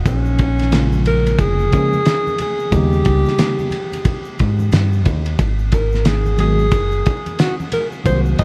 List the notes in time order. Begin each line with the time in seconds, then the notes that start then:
0.06 A#1 C#4, kick, ride, shaker
0.25 shaker
0.38 kick, ride, shaker
0.58 snare, ride, shaker
0.71 C#3 F3 G#3 A#3 F4, snare, hi-hat pedal, ride, low conga, shaker
0.92 high conga, shaker
1.04 A#4, ride, low conga, shaker
1.26 ride, high conga, shaker
1.39 F1 G#4, kick, ride, shaker
1.59 shaker
1.71 C#3 F3 G#3 A#3 C#4, kick, ride, shaker
1.93 high conga, shaker
2.05 snare, hi-hat pedal, ride, shaker
2.27 high conga, shaker
2.38 G#4, ride, low conga, shaker
2.59 shaker
2.71 D#2 C#3 G3 A#3 B3 D#4, kick, ride, shaker
2.75 G4
2.92 shaker
3.05 C#2, kick, ride, shaker
3.25 snare, shaker
3.38 snare, hi-hat pedal, ride, low conga, shaker
3.59 high conga, shaker
3.71 ride, high conga, low conga, shaker
3.92 ride, high conga, shaker
4.05 kick, ride, shaker
4.25 shaker
4.39 G#2, kick, ride, shaker
4.59 high conga, shaker
4.72 G2, snare, hi-hat pedal, ride, shaker
4.93 shaker
5.05 D#2, kick, ride, low conga, shaker
5.25 ride, shaker
5.39 G#1, kick, ride, shaker
5.59 shaker
5.72 A#4, kick, ride, shaker
5.92 snare, shaker
6.05 G#4, snare, hi-hat pedal, ride, low conga, shaker
6.26 high conga, shaker
6.37 D#3 F#3 G#3 B3 F#4 G#4, ride, low conga, shaker
6.59 high conga, shaker
6.71 F#1, kick, ride, shaker
6.91 shaker
7.06 kick, ride, shaker
7.26 ride, high conga, shaker
7.39 F#4, snare, hi-hat pedal, ride, shaker
7.60 high conga, shaker
7.72 A#4, ride, low conga, shaker
7.92 shaker
8.04 C2 D#3 F#3 A#3 C4 F4 C5, kick, ride, shaker
8.13 F#4
8.25 shaker
8.38 A#1 D#5, kick, ride, shaker